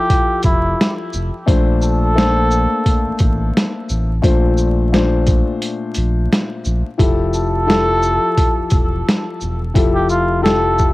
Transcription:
0.00 1.32 F3 loud
0.00 1.32 E4 medium
0.00 0.41 G4 medium
0.00 1.32 G4 medium
0.00 1.33 A4 loud
0.10 kick medium
0.10 closed hi-hat medium
0.43 0.75 F1 medium
0.43 0.95 E4 medium
0.43 kick medium
0.43 closed hi-hat medium
0.43 shaker medium
0.81 snare loud
0.81 closed hi-hat medium
1.13 1.31 F1 medium
1.13 shaker medium
1.46 2.67 A#1 loud
1.46 2.11 A#2 medium
1.46 2.11 A3 medium
1.46 2.12 D4 medium
1.46 2.12 C5 loud
1.46 kick loud
1.46 closed hi-hat loud
1.82 3.51 A4 loud
1.82 shaker medium
2.15 4.09 A3 medium
2.15 4.08 A#3 medium
2.15 4.09 D4 medium
2.15 4.09 C5 loud
2.15 snare loud
2.15 closed hi-hat medium
2.51 shaker medium
2.86 kick medium
2.86 closed hi-hat loud
3.06 3.12 A1 medium
3.19 3.51 A1 medium
3.19 kick loud
3.19 closed hi-hat medium
3.19 shaker medium
3.57 snare loud
3.57 closed hi-hat medium
3.89 4.21 A1 loud
3.89 shaker medium
4.22 5.43 A#1 loud
4.22 4.87 A#2 loud
4.22 4.87 A3 medium
4.22 4.88 D4 medium
4.22 4.88 C5 loud
4.22 kick loud
4.22 closed hi-hat loud
4.58 shaker medium
4.92 6.85 A#2 medium
4.92 6.85 A3 medium
4.92 6.85 D4 medium
4.92 6.86 C5 loud
4.92 snare loud
4.92 closed hi-hat medium
5.27 kick medium
5.27 closed hi-hat medium
5.27 shaker medium
5.62 closed hi-hat loud
5.94 6.27 A#1 loud
5.94 closed hi-hat medium
5.94 shaker medium
6.33 snare loud
6.33 closed hi-hat medium
6.65 6.83 A#1 loud
6.65 shaker medium
6.98 8.18 F1 loud
6.98 7.63 F3 medium
6.98 7.63 E4 medium
6.98 7.63 G4 medium
6.98 7.63 A4 medium
6.98 kick loud
6.98 closed hi-hat loud
7.33 9.03 A4 loud
7.33 shaker medium
7.67 9.60 F3 medium
7.67 9.60 E4 medium
7.67 9.60 G4 medium
7.67 9.61 A4 loud
7.67 snare loud
7.67 closed hi-hat medium
8.03 shaker medium
8.38 kick medium
8.38 closed hi-hat loud
8.58 8.63 E1 medium
8.70 9.03 E1 medium
8.70 kick loud
8.70 closed hi-hat medium
8.70 shaker medium
9.09 snare loud
9.09 closed hi-hat medium
9.41 9.72 E1 medium
9.41 shaker medium
9.74 10.93 F1 loud
9.74 10.39 F3 medium
9.74 10.39 E4 medium
9.74 10.39 G4 medium
9.74 10.40 A4 medium
9.74 kick loud
9.74 closed hi-hat loud
9.95 10.08 G4 medium
10.09 10.41 F4 medium
10.09 shaker medium
10.42 10.93 F3 loud
10.42 10.93 E4 medium
10.42 10.93 G4 medium
10.42 10.93 A4 medium
10.42 10.93 A4 loud
10.42 snare loud
10.46 closed hi-hat medium
10.78 kick medium
10.78 shaker medium

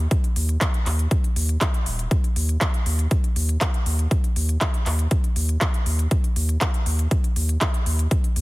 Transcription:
0.11 kick loud
0.11 closed hi-hat medium
0.24 closed hi-hat soft
0.36 0.57 D#2 loud
0.36 open hi-hat loud
0.49 closed hi-hat soft
0.61 kick loud
0.61 clap loud
0.61 closed hi-hat medium
0.74 closed hi-hat soft
0.86 1.07 D#2 loud
0.86 clap soft
0.86 open hi-hat loud
0.99 closed hi-hat soft
1.11 kick loud
1.11 closed hi-hat medium
1.24 closed hi-hat soft
1.36 1.57 D#2 medium
1.36 open hi-hat loud
1.49 closed hi-hat soft
1.61 kick loud
1.61 clap loud
1.61 closed hi-hat medium
1.74 closed hi-hat soft
1.86 2.07 D#1 medium
1.86 open hi-hat loud
1.99 closed hi-hat soft
2.11 kick loud
2.11 closed hi-hat medium
2.24 closed hi-hat soft
2.36 2.57 D#2 loud
2.36 open hi-hat loud
2.49 closed hi-hat soft
2.61 kick loud
2.61 clap loud
2.61 closed hi-hat medium
2.74 closed hi-hat soft
2.86 3.07 D#2 loud
2.86 open hi-hat medium
2.99 closed hi-hat soft
3.11 kick loud
3.11 closed hi-hat medium
3.24 closed hi-hat soft
3.36 3.57 D#2 medium
3.36 open hi-hat loud
3.49 closed hi-hat soft
3.61 kick loud
3.61 clap loud
3.61 closed hi-hat medium
3.74 closed hi-hat soft
3.86 4.07 D#2 loud
3.86 open hi-hat medium
3.99 closed hi-hat soft
4.11 kick loud
4.11 closed hi-hat medium
4.24 closed hi-hat soft
4.36 4.57 D#2 loud
4.36 open hi-hat loud
4.49 closed hi-hat soft
4.61 kick loud
4.61 clap loud
4.61 closed hi-hat medium
4.74 closed hi-hat soft
4.86 5.07 D#2 loud
4.86 clap soft
4.86 open hi-hat medium
4.99 closed hi-hat soft
5.11 kick loud
5.11 closed hi-hat medium
5.24 closed hi-hat soft
5.36 5.57 D#2 medium
5.36 open hi-hat loud
5.49 closed hi-hat soft
5.61 kick loud
5.61 clap loud
5.61 closed hi-hat medium
5.74 closed hi-hat soft
5.86 6.07 D#2 loud
5.86 open hi-hat medium
5.99 closed hi-hat soft
6.11 kick loud
6.11 closed hi-hat loud
6.24 closed hi-hat soft
6.36 6.57 D#2 loud
6.36 open hi-hat loud
6.49 closed hi-hat soft
6.61 kick loud
6.61 clap loud
6.61 closed hi-hat loud
6.74 closed hi-hat soft
6.86 7.07 D#2 loud
6.86 open hi-hat medium
6.99 closed hi-hat soft
7.11 kick loud
7.11 closed hi-hat loud
7.24 closed hi-hat soft
7.36 7.57 D#2 medium
7.36 open hi-hat loud
7.49 closed hi-hat soft
7.61 kick loud
7.61 clap loud
7.61 closed hi-hat loud
7.74 closed hi-hat soft
7.86 8.07 D#2 loud
7.86 open hi-hat medium
7.99 closed hi-hat soft
8.11 kick loud
8.11 closed hi-hat loud
8.24 closed hi-hat soft
8.36 8.41 D#2 loud
8.36 open hi-hat loud

